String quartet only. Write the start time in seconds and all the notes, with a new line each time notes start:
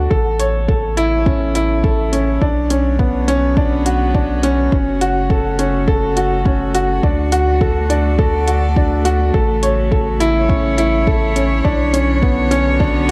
Already playing: D3 A3 F#4 D5
0.11 C#3
0.66 C#5
1.15 E4
2.42 D3
2.76 B3
3.35 F#4
4.72 C#3
4.81 A3
7.04 D3
8.07 D5
9.35 C#3
10.18 E4
10.38 C#5
11.65 D3
12.28 B3
12.68 F#4